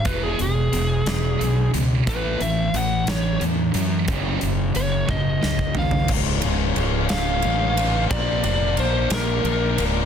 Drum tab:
CC |------------|------------|------------|x-----------|
RD |------------|------------|------------|--x-x-x-x-x-|
HH |x-x-x-x-x-x-|x-x-x-x-x-x-|x-x-x-------|------------|
SD |------o-----|------o-----|--------o---|------o-----|
T1 |------------|------------|------o-----|------------|
FT |------------|------------|----------oo|------------|
BD |o-----------|o-----------|o-----o--o--|o-----------|

CC |------------|
RD |x-x-x-x-x-x-|
HH |------------|
SD |------o-----|
T1 |------------|
FT |------------|
BD |o-----------|